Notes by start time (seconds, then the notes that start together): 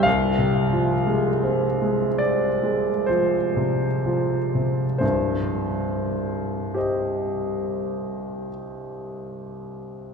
0.03 C2 F5
0.38 C3
0.73 F3
1.07 G#3
1.44 C4
1.82 G#3
2.18 C4 D5
2.63 G#3
3.06 F3 C5
3.56 C3
4.06 F3
4.55 C3
4.98 C2 G2 C5
6.74 G4 C5 D#5